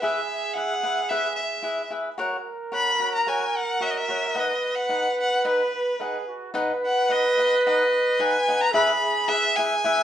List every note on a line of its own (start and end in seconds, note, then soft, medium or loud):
0.01 0.19 E4 medium
0.01 1.88 G#4 medium
0.01 0.19 G#4 medium
0.01 0.19 B4 medium
0.01 0.55 E5 medium
0.01 0.20 E5 medium
0.54 0.72 E4 soft
0.54 0.73 G#4 soft
0.54 0.73 B4 medium
0.54 0.73 E5 soft
0.54 1.10 F#5 medium
0.83 0.99 E4 soft
0.83 0.99 G#4 medium
0.83 0.99 B4 medium
0.83 1.00 E5 soft
1.09 1.27 E4 medium
1.09 1.27 G#4 medium
1.09 1.27 B4 medium
1.09 1.36 E5 medium
1.09 1.27 E5 medium
1.36 1.88 E5 medium
1.62 1.80 E4 soft
1.62 1.81 G#4 soft
1.62 1.81 B4 soft
1.62 1.81 E5 medium
1.90 2.08 E4 soft
1.90 2.08 G#4 soft
1.90 2.08 B4 soft
1.90 2.09 E5 medium
2.18 2.35 F#4 medium
2.18 2.36 A#4 medium
2.18 4.38 A#4 medium
2.18 2.36 C#5 medium
2.18 2.36 F#5 loud
2.72 2.89 F#4 soft
2.72 2.89 A#4 soft
2.72 2.90 C#5 soft
2.72 2.90 F#5 medium
2.72 3.12 B5 loud
3.00 3.17 F#4 soft
3.00 3.17 A#4 soft
3.00 3.17 C#5 soft
3.00 3.17 F#5 medium
3.15 3.29 A#5 medium
3.27 3.44 F#4 medium
3.27 3.44 A#4 medium
3.27 3.44 C#5 medium
3.27 3.44 F#5 medium
3.27 3.58 G#5 medium
3.56 3.84 F#5 medium
3.80 3.98 F#4 medium
3.80 3.98 A#4 soft
3.80 3.98 C#5 soft
3.80 3.92 E5 medium
3.80 3.98 F#5 medium
3.91 3.99 D#5 medium
3.98 4.41 E5 medium
4.08 4.25 F#4 soft
4.08 4.25 A#4 soft
4.08 4.25 C#5 medium
4.08 4.26 F#5 medium
4.34 4.52 D#4 medium
4.34 4.52 B4 medium
4.34 6.02 B4 medium
4.34 4.52 D#5 medium
4.34 4.52 F#5 medium
4.39 4.77 D#5 medium
4.75 5.19 F#5 medium
4.89 5.06 D#4 medium
4.89 5.07 B4 soft
4.89 5.07 D#5 medium
4.89 5.07 F#5 medium
5.21 5.44 F#5 medium
5.45 5.61 D#4 medium
5.45 5.62 B4 medium
5.45 6.25 B4 medium
5.45 5.62 D#5 medium
5.45 5.62 F#5 medium
6.00 6.17 D#4 soft
6.00 6.27 G#4 medium
6.00 6.17 B4 soft
6.00 6.17 D#5 soft
6.00 6.17 F#5 medium
6.28 6.53 F#4 medium
6.54 6.71 D#4 medium
6.54 8.73 B4 loud
6.54 6.72 B4 medium
6.54 6.72 D#5 loud
6.54 6.72 F#5 loud
6.86 7.14 F#5 medium
7.09 7.26 D#4 medium
7.09 7.27 B4 medium
7.09 7.27 D#5 medium
7.09 7.66 D#5 medium
7.09 7.27 F#5 medium
7.37 7.54 D#4 soft
7.37 7.54 B4 soft
7.37 7.54 D#5 medium
7.37 7.55 F#5 medium
7.67 7.82 D#4 medium
7.67 7.82 B4 medium
7.67 7.83 D#5 medium
7.67 8.22 D#5 medium
7.67 7.83 F#5 medium
8.19 8.36 D#4 medium
8.19 8.36 B4 medium
8.19 8.36 D#5 medium
8.19 8.37 F#5 medium
8.19 8.63 G#5 medium
8.48 8.63 D#4 medium
8.48 8.64 B4 medium
8.48 8.64 D#5 soft
8.48 8.64 F#5 medium
8.61 8.74 A#5 loud
8.72 8.90 E4 medium
8.72 10.03 G#4 medium
8.72 8.90 G#4 medium
8.72 8.91 B4 loud
8.72 8.91 E5 medium
8.72 9.30 B5 medium
9.28 9.45 E4 medium
9.28 9.45 G#4 medium
9.28 9.45 B4 medium
9.28 9.58 E5 loud
9.28 9.45 E5 medium
9.56 9.73 E4 medium
9.56 9.73 G#4 medium
9.56 9.73 B4 medium
9.56 9.74 E5 medium
9.56 10.03 G#5 medium
9.84 10.00 E4 medium
9.84 10.00 G#4 medium
9.84 10.01 B4 medium
9.84 10.01 E5 loud